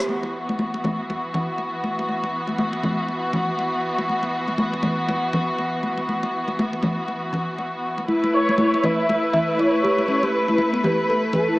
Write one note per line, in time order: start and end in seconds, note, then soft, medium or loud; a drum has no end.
0.09 8.05 E3 medium
0.09 8.05 B3 medium
0.09 8.05 F#4 medium
0.09 high conga medium
0.23 muted conga soft
0.49 muted conga soft
0.49 high conga medium
0.59 high conga medium
0.74 muted conga soft
0.84 high conga medium
0.84 low conga medium
1.10 muted conga soft
1.10 high conga medium
1.34 muted conga soft
1.34 low conga loud
1.58 muted conga soft
1.84 high conga medium
1.99 muted conga soft
2.09 high conga medium
2.24 muted conga soft
2.47 muted conga soft
2.47 high conga medium
2.58 high conga medium
2.73 muted conga soft
2.83 high conga medium
2.83 low conga loud
3.08 muted conga soft
3.33 muted conga soft
3.33 high conga medium
3.33 low conga loud
3.59 muted conga soft
3.98 muted conga soft
4.09 high conga medium
4.23 muted conga soft
4.48 muted conga soft
4.48 high conga medium
4.58 high conga loud
4.73 muted conga soft
4.83 high conga loud
4.83 low conga medium
5.09 muted conga soft
5.09 high conga medium
5.33 muted conga medium
5.33 low conga loud
5.58 muted conga soft
5.83 high conga medium
5.98 muted conga soft
6.09 high conga medium
6.23 muted conga medium
6.48 muted conga soft
6.48 high conga medium
6.59 high conga loud
6.73 muted conga soft
6.83 high conga loud
6.83 low conga loud
7.08 muted conga soft
7.33 muted conga soft
7.33 high conga medium
7.33 low conga medium
7.58 muted conga soft
7.98 muted conga soft
8.08 11.59 A3 medium
8.08 8.22 E4 medium
8.08 11.59 E4 medium
8.08 11.59 B4 medium
8.08 high conga medium
8.24 muted conga soft
8.34 8.47 E4 medium
8.34 8.85 C#5 loud
8.49 muted conga soft
8.49 high conga medium
8.58 8.73 E4 medium
8.58 high conga loud
8.74 muted conga soft
8.84 8.92 B4 medium
8.84 9.60 E5 loud
8.84 high conga loud
8.84 low conga medium
9.09 muted conga soft
9.09 high conga medium
9.23 9.33 B4 medium
9.33 9.47 E5 loud
9.33 muted conga soft
9.33 low conga medium
9.48 9.58 B4 medium
9.58 9.72 E4 medium
9.58 10.08 C#5 loud
9.58 muted conga soft
9.83 9.91 G4 medium
9.83 high conga medium
9.98 muted conga soft
10.08 10.22 C#4 medium
10.08 10.24 C#5 loud
10.08 high conga medium
10.23 10.33 G4 medium
10.23 10.58 B4 loud
10.23 muted conga medium
10.48 10.58 E4 medium
10.48 muted conga soft
10.48 high conga medium
10.58 11.30 B4 loud
10.58 high conga medium
10.73 10.82 B3 loud
10.73 muted conga soft
10.84 10.92 G4 medium
10.84 high conga medium
10.84 low conga loud
11.09 11.17 A4 medium
11.09 muted conga soft
11.33 11.59 A4 loud
11.33 11.48 B4 medium
11.33 muted conga medium
11.33 high conga medium
11.33 low conga medium
11.48 11.58 E4 medium